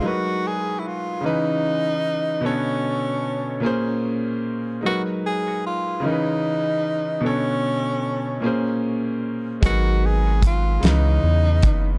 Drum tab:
HH |------|------|------|------|
SD |------|------|------|------|
BD |------|------|------|------|

HH |x-xx-x|
SD |---o--|
BD |o-o--o|